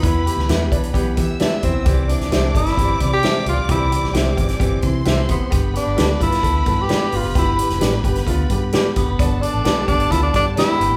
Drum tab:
HH |x-x-x-xxx-x-x-x-|x-xxx-xxx-x-x-x-|x-x-x-xxx-x-x-x-|x-x-x-xxx-x-x-o-|
SD |---oo-------o---|---oo--o----o---|---oo--o----o---|----o--o----o---|
BD |o-----o-o-o---o-|o-----o-o-o-----|o-----o-o-o---o-|o-----o-o-o-----|

HH |x-xxx-xxx-x-x-x-|x-x-x-xxx-x-x-x-|
SD |---oo--o----o---|----o-------o---|
BD |o-----o-o-o---o-|o-----o-o-o-----|